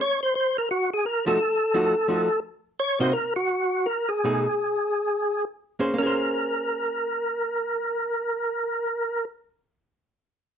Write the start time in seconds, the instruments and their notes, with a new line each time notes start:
0.01 tonewheel organ C#5
0.23 tonewheel organ C5
0.35 tonewheel organ C5
0.58 tonewheel organ A#4
0.71 tonewheel organ F#4
0.94 tonewheel organ G#4
1.06 tonewheel organ A#4
1.26 hollow-body jazz guitar F3 A3 D#4 F#4, tonewheel organ A4
1.74 hollow-body jazz guitar F3 A3 D#4 F#4
2.08 hollow-body jazz guitar F3 A3 D#4 F#4
2.80 tonewheel organ C#5
3.00 hollow-body jazz guitar C3 A#3 D#4 F#4, tonewheel organ C5
3.13 tonewheel organ A#4
3.36 tonewheel organ F#4
3.86 tonewheel organ A#4
4.09 tonewheel organ G#4
4.24 hollow-body jazz guitar B2 A3 D#4 G#4
5.79 hollow-body jazz guitar A#3 C#4 G#4 C5
5.94 hollow-body jazz guitar A#3
5.98 hollow-body jazz guitar C#4, tonewheel organ A#4
6.03 hollow-body jazz guitar G#4 C5